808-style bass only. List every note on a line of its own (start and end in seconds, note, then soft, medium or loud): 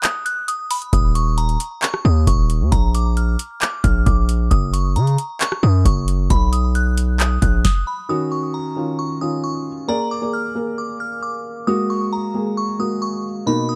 0.93 1.57 D#1 loud
2.05 2.26 D#2 loud
2.27 2.62 D#1 loud
2.61 2.71 D#2 loud
2.72 3.37 A#1 loud
3.84 4.05 A#1 loud
4.06 4.49 A#1 loud
4.51 4.97 F#1 loud
4.96 5.17 C#3 loud
5.63 5.85 F#2 loud
5.85 6.28 F#1 loud
6.30 7.38 B1 loud
7.42 7.64 A#1 loud